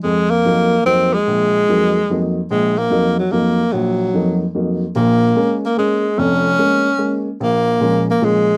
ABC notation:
X:1
M:3/4
L:1/8
Q:"Swing" 1/4=147
K:Ebdor
V:1 name="Tenor saxophone"
A, B,3 C A,- | A,4- A, z | A, B,2 G, B,2 | G,4 z2 |
[K:Bbm] B,3 B, A,2 | D4- D z | B,3 B, A,2 |]
V:2 name="Upright piano" clef=bass
F,,2 [F,,G,B,E] z [F,,G,B,E] z | B,,,2 [F,,G,B,E] z [F,,G,B,E] z | B,,,2 [F,,G,B,E] z [F,,G,B,E] z | B,,,2 [F,,G,B,E] z [F,,G,B,E] z |
[K:Bbm] [B,,,B,,]2 [A,B,D] z [A,B,D] z | [F,,,F,,]2 [A,B,D] z [A,B,D] z | B,,,2 [B,,F,A,D] z [B,,F,A,D] z |]